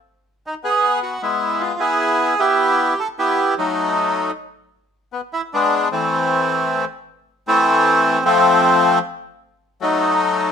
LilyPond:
<<
  \new Staff \with { instrumentName = "Bandoneon" } { \time 3/4 \key a \minor \tempo 4 = 154 r4 dis'8 gis'4 fis'8 | e'4 f'8 gis'4. | g'4. a'8 g'4 | dis'2 r4 |
r4 b8 e'8 d'4 | c'2~ c'8 r8 | r4 c'2 | c'2 r4 |
r4 dis'2 | }
  \new Staff \with { instrumentName = "Bandoneon" } { \time 3/4 \key a \minor r4. b4. | <gis b>4. <b e'>4. | <b e'>4. r8 <b e'>4 | <fis a>2 r4 |
r2 <gis b>4 | <e a>2~ <e a>8 r8 | r4 <e a>2 | <f a>2 r4 |
r4 <fis a>2 | }
>>